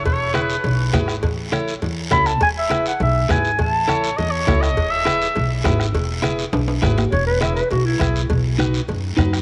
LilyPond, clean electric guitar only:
\new Staff \with { instrumentName = "Clean electric guitar" } { \time 4/4 \key e \major \tempo 4 = 204 r4 <e' gis' b'>8 r4. <e' gis' b'>8 r8 | r4 <e' a' cis''>8 r4. <e' a' cis''>8 r8 | r4 <e' gis' b'>8 r4. <e' gis' b'>8 r8 | r4 <e' a' cis''>8 r4. <e' a' cis''>8 r8 |
r4 <e' gis' b'>8 r4. <e' gis' b'>8 r8 | r4 <e' gis' b'>8 r4. <e' gis' b'>8 r8 | r4 <e' gis' b'>8 r4. <e' gis' b'>8 r8 | r4 <dis' fis' b'>8 r4. <dis' fis' b'>8 r8 | }